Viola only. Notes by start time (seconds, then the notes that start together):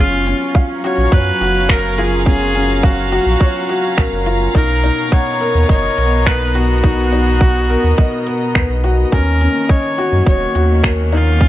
Already playing: F4
0.84 C#5
1.13 B4
1.69 A#4
1.98 G#4
2.27 G#4
2.84 F#4
4.55 A#4
5.13 C#5
5.70 C#5
6.26 B4
6.55 F#4
9.12 A#4
9.70 C#5
10.28 C#5
11.13 F4